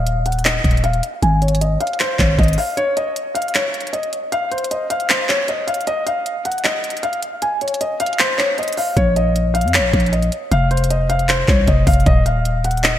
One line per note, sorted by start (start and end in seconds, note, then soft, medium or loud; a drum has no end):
0.00 0.61 D#1 loud
0.00 0.23 F5 medium
0.07 closed hi-hat medium
0.26 0.42 F#5 medium
0.26 closed hi-hat medium
0.32 closed hi-hat medium
0.39 closed hi-hat soft
0.45 0.81 D#5 medium
0.45 clap loud
0.45 closed hi-hat medium
0.64 1.02 D#1 loud
0.64 kick medium
0.64 closed hi-hat medium
0.71 closed hi-hat medium
0.77 closed hi-hat medium
0.84 1.00 F5 medium
0.84 closed hi-hat medium
0.93 closed hi-hat soft
1.03 closed hi-hat medium
1.22 1.78 G#1 loud
1.22 1.39 G#5 medium
1.22 closed hi-hat medium
1.42 1.58 C#5 medium
1.42 closed hi-hat soft
1.48 closed hi-hat medium
1.55 closed hi-hat medium
1.61 1.77 D#5 medium
1.61 closed hi-hat medium
1.80 1.97 F5 medium
1.80 closed hi-hat medium
1.87 closed hi-hat medium
1.93 closed hi-hat soft
2.00 2.16 C5 medium
2.00 clap loud
2.00 closed hi-hat medium
2.19 2.38 G#1 loud
2.19 2.35 C#5 medium
2.19 kick medium
2.19 clap medium
2.39 2.57 G#1 loud
2.39 2.55 D#5 medium
2.39 kick medium
2.39 closed hi-hat soft
2.43 closed hi-hat medium
2.48 closed hi-hat medium
2.53 closed hi-hat medium
2.58 2.74 F5 medium
2.58 open hi-hat medium
2.77 2.93 C#5 loud
2.77 closed hi-hat medium
2.97 3.33 D#5 medium
2.97 closed hi-hat medium
3.16 closed hi-hat medium
3.35 3.51 F5 medium
3.35 closed hi-hat medium
3.42 closed hi-hat medium
3.48 closed hi-hat soft
3.55 3.91 C#5 medium
3.55 clap loud
3.55 closed hi-hat medium
3.74 closed hi-hat medium
3.81 closed hi-hat medium
3.87 closed hi-hat medium
3.93 4.09 D#5 medium
3.93 closed hi-hat medium
4.03 closed hi-hat soft
4.13 closed hi-hat medium
4.32 4.48 F5 medium
4.32 closed hi-hat medium
4.51 4.68 C5 medium
4.51 closed hi-hat soft
4.58 closed hi-hat medium
4.64 closed hi-hat medium
4.71 4.87 D#5 medium
4.71 closed hi-hat medium
4.90 5.06 F5 medium
4.90 closed hi-hat medium
5.00 closed hi-hat soft
5.09 5.26 C5 medium
5.09 clap loud
5.09 closed hi-hat medium
5.29 5.45 C#5 medium
5.29 clap medium
5.48 5.65 D#5 medium
5.48 closed hi-hat medium
5.67 5.84 F5 medium
5.67 closed hi-hat medium
5.67 open hi-hat medium
5.74 closed hi-hat medium
5.81 closed hi-hat soft
5.87 6.03 D#5 loud
5.87 closed hi-hat medium
6.06 6.43 F5 medium
6.06 closed hi-hat medium
6.26 closed hi-hat medium
6.45 6.61 F#5 medium
6.45 closed hi-hat medium
6.52 closed hi-hat medium
6.58 closed hi-hat soft
6.64 7.01 D#5 medium
6.64 clap loud
6.64 closed hi-hat medium
6.84 closed hi-hat medium
6.90 closed hi-hat medium
6.97 closed hi-hat medium
7.03 7.19 F5 medium
7.03 closed hi-hat medium
7.13 closed hi-hat soft
7.22 closed hi-hat medium
7.42 7.58 G#5 medium
7.42 closed hi-hat medium
7.61 7.78 C#5 medium
7.61 closed hi-hat soft
7.68 closed hi-hat medium
7.74 closed hi-hat medium
7.81 7.97 D#5 medium
7.81 closed hi-hat medium
8.00 8.16 F5 medium
8.00 closed hi-hat medium
8.06 closed hi-hat medium
8.13 closed hi-hat soft
8.19 8.36 C5 medium
8.19 clap loud
8.19 closed hi-hat medium
8.38 8.54 C#5 medium
8.38 clap medium
8.58 8.75 D#5 medium
8.58 closed hi-hat soft
8.63 closed hi-hat medium
8.68 closed hi-hat medium
8.73 closed hi-hat medium
8.77 8.94 F5 medium
8.77 open hi-hat medium
8.97 9.66 A#1 loud
8.97 9.13 C#5 loud
8.97 kick loud
8.97 closed hi-hat medium
9.16 9.53 D#5 medium
9.16 closed hi-hat medium
9.36 closed hi-hat medium
9.54 9.70 F5 medium
9.54 closed hi-hat medium
9.61 9.80 F2 loud
9.61 closed hi-hat medium
9.68 closed hi-hat soft
9.74 10.11 C#5 medium
9.74 clap loud
9.74 closed hi-hat medium
9.79 9.93 A#1 loud
9.93 10.31 A#1 loud
9.93 kick loud
9.93 closed hi-hat medium
10.00 closed hi-hat medium
10.06 closed hi-hat medium
10.12 10.29 D#5 medium
10.12 closed hi-hat medium
10.22 closed hi-hat soft
10.32 closed hi-hat medium
10.51 11.44 F1 loud
10.51 10.68 F5 medium
10.51 closed hi-hat medium
10.71 10.87 C5 medium
10.71 closed hi-hat soft
10.77 closed hi-hat medium
10.84 closed hi-hat medium
10.90 11.07 D#5 medium
10.90 closed hi-hat medium
11.10 11.26 F5 medium
11.10 closed hi-hat medium
11.19 closed hi-hat soft
11.29 11.45 C5 medium
11.29 clap loud
11.29 closed hi-hat medium
11.48 11.67 C2 loud
11.48 11.65 C#5 medium
11.48 kick medium
11.48 clap medium
11.67 11.86 F1 loud
11.67 11.84 D#5 medium
11.67 kick medium
11.67 closed hi-hat medium
11.87 12.06 F1 loud
11.87 12.03 F5 medium
11.87 kick loud
11.87 closed hi-hat medium
11.87 open hi-hat medium
11.93 closed hi-hat medium
12.00 closed hi-hat soft
12.06 12.99 D#1 loud
12.06 12.23 D#5 loud
12.06 kick loud
12.06 closed hi-hat medium
12.26 12.62 F5 medium
12.26 closed hi-hat medium
12.45 closed hi-hat medium
12.64 12.81 F#5 medium
12.64 closed hi-hat medium
12.71 closed hi-hat medium
12.77 closed hi-hat soft
12.84 12.99 D#5 medium
12.84 clap loud
12.84 closed hi-hat medium